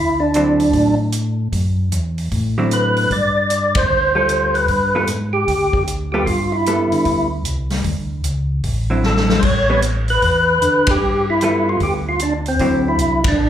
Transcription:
Already playing: D2 E4
0.20 D4
0.34 D3 F#3 C4 E4, closed hi-hat
0.60 open hi-hat
0.73 A2, kick, open hi-hat
1.12 closed hi-hat
1.52 F#2, kick, open hi-hat
1.92 E2, closed hi-hat
2.18 open hi-hat
2.31 A2, kick, open hi-hat
2.58 D3 F#3 C4 E4
2.71 B4, closed hi-hat
2.97 open hi-hat
3.11 G2 D5, kick, open hi-hat
3.50 closed hi-hat
3.75 C5, kick, ride
3.90 D2
4.15 G3 F4 A4
4.29 closed hi-hat
4.54 B4, open hi-hat
4.68 G2, kick, open hi-hat
4.95 G3 B3 F4 A4
5.07 G#2, closed hi-hat
5.33 G4
5.48 D2, kick, open hi-hat
5.73 kick
5.87 closed hi-hat
6.12 G3 B3 F4 G4 A4
6.26 G2 F4, kick, open hi-hat
6.52 E4
6.66 G3 B3 A4, closed hi-hat
6.92 D3, open hi-hat
7.05 D2, kick, open hi-hat
7.45 C2, closed hi-hat
7.70 snare, open hi-hat
7.84 D2, kick, open hi-hat
8.24 C#2, closed hi-hat
8.64 A1, kick, open hi-hat
8.90 D3 F#3 C4 E4
9.03 A4, snare
9.17 snare
9.29 snare
9.40 A1 C5, kick, crash
9.45 C#5
9.69 G3 B3 C#4
9.82 closed hi-hat
10.08 B4, open hi-hat
10.22 E2, kick, open hi-hat
10.62 D3, closed hi-hat
10.87 G4, kick, ride
11.01 G2
11.30 E4
11.41 G3 B3 F4 A4, closed hi-hat
11.69 F4
11.80 D2 G4, kick, open hi-hat
12.09 F4
12.19 D4, closed hi-hat
12.46 C4, open hi-hat
12.59 D2 D3 F#3 C4 E4, kick, open hi-hat
12.88 E4
12.99 C2, closed hi-hat
13.24 D4, kick, ride
13.38 A1

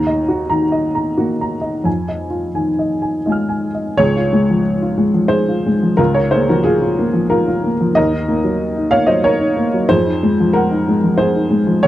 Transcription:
Already playing: D#2 A#5
0.07 D#5
0.28 F#4
0.50 D#3 A#5
0.72 D#5
0.95 A#5
1.18 A#3 F#4
1.41 A#5
1.61 D#5
1.84 F2 G#5
2.08 D#5
2.30 F4
2.54 D#3 G#5
2.79 D#5
3.02 G#5
3.26 G#3 F4 D#5 G#5
3.32 F6
3.49 G#5
3.74 D#5
3.97 C#2 G#4 C#5
4.16 F4
4.33 G#3
4.50 F3
4.82 F4
4.98 G#3
5.14 F3
5.28 G#4 C5
5.49 F4
5.66 G#3
5.83 F3
5.97 C#2 F4 A#4
6.14 F4 A#4 C#5
6.31 A#3 G#4 C5
6.49 F3 F#4 A#4
6.64 F4 G#4
6.81 F4
6.99 A#3
7.13 F3
7.30 F4 A#4
7.48 F4
7.63 A#3
7.81 F3
7.95 D#2 A#4 D#5
8.13 D#4
8.28 A#3
8.44 F#3
8.77 D#4
8.91 A#3 C#5 F5
9.06 F#3 C5 D#5
9.24 A#4 C#5
9.40 D#4
9.56 A#3
9.74 F#3
9.89 F2 G#4 C5
10.06 D#4
10.23 G#3
10.40 F3
10.53 A#4 F#5
10.71 D#4
10.88 G#3
11.04 F3
11.18 G#4 C5
11.36 D#4
11.51 G#3
11.67 F3
11.83 G#4 C#5

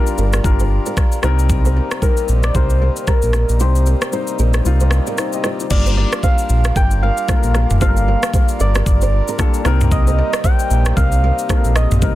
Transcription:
Already playing: G3 D4 F4 A#4
0.07 shaker
0.18 G1 G4 A#4, shaker
0.33 G4 A#4, cross-stick, shaker
0.43 G1 G3 D4 F4 A#4, kick, shaker
0.59 A4 C5, shaker
0.86 A#4 D5, shaker
0.97 kick, cross-stick, shaker
1.12 shaker
1.22 C2 C3 G3 A#3 C4 D#4 G4 A#4 C5, cross-stick, shaker
1.39 shaker
1.49 kick, shaker
1.65 A4 C5, shaker
1.76 A#4 D5
1.91 cross-stick, shaker
2.01 G3 C4 D#4 G4 A#4 C5, kick, shaker
2.17 shaker
2.28 A#1, shaker
2.43 D5, cross-stick, shaker
2.54 C2 G3 C4 D#4 G4 A#4 C5, kick, shaker
2.70 shaker
2.82 A#4 D5
2.96 shaker
3.07 G4 A#4 C5, kick, cross-stick, shaker
3.22 A#1, shaker
3.33 G4 A#4, cross-stick, shaker
3.49 A#1, shaker
3.59 C2 G3 C4 D#4 G4 C5, shaker
3.75 shaker
3.86 A#4 D5, shaker
4.02 cross-stick, shaker
4.11 G3 C4 D#4 G4 C5, shaker
4.27 shaker
4.39 A#1 G4 A#4, shaker
4.54 G4 A#4, cross-stick, shaker
4.64 C2 G3 C4 D#4 F4, shaker
4.80 A4 C5, shaker
4.91 cross-stick, shaker
5.07 A#4 D5, shaker
5.18 D#4 C5, cross-stick, shaker
5.33 G4 D#5, shaker
5.44 F4 A4 C5 D5, cross-stick, shaker
5.59 D#4 C5, shaker
5.69 G1 G3 A#3 D4 F4 A#4 D5, kick, crash, shaker
5.86 A4 C5, shaker
5.97 A#4 D5
6.12 cross-stick, shaker
6.23 G4 C5 F5, kick, shaker
6.38 shaker
6.49 A#1, shaker
6.64 cross-stick, shaker
6.76 G1 G4 A#4 G5, kick, shaker
6.91 shaker
7.03 A#4 D5 F5
7.17 shaker
7.27 G3 A#3 D4 F4 G4 A4 C5, kick, cross-stick, shaker
7.36 A#4
7.43 A#1, shaker
7.54 G4 A#4, cross-stick, shaker
7.70 F1, mid tom, shaker
7.80 G1 G3 A#3 D4 F4 G4 A4 C5 F5, kick, shaker
7.89 A#4
7.97 shaker
8.08 A#4 D5
8.23 cross-stick, shaker
8.34 G4 C5, kick, shaker
8.49 shaker
8.60 G1 G4 A#4 D5, shaker
8.75 G4 A#4, cross-stick, shaker
8.86 G1 D5, kick, shaker
9.01 A4 C5, shaker
9.28 A#4 D5, shaker
9.38 G3 A#3 D4 F4 A4, kick, cross-stick, shaker
9.54 shaker
9.64 C2 C3 G3 A#3 C4 D#4 G4 A#4 C5, cross-stick, shaker
9.81 mid tom, shaker
9.91 D#5, kick, shaker
10.07 A4 C5, shaker
10.18 A#4 D5
10.33 cross-stick, shaker
10.44 G4 C5 G5, kick, shaker
10.59 shaker
10.70 A#1, shaker
10.85 cross-stick, shaker
10.97 C2 G4 A#4 F5, kick, shaker
11.12 shaker
11.24 A#4 D5
11.39 shaker
11.48 G3 A#3 C4 D#4 G4 A4 C5, kick, cross-stick, shaker
11.57 A#4
11.64 A#1, shaker
11.76 G4 A#4 D#5, cross-stick, shaker
11.91 A#1, mid tom, shaker
12.01 C2 G3 A#3 C4 D#4 G4 A#4 C5, kick, shaker

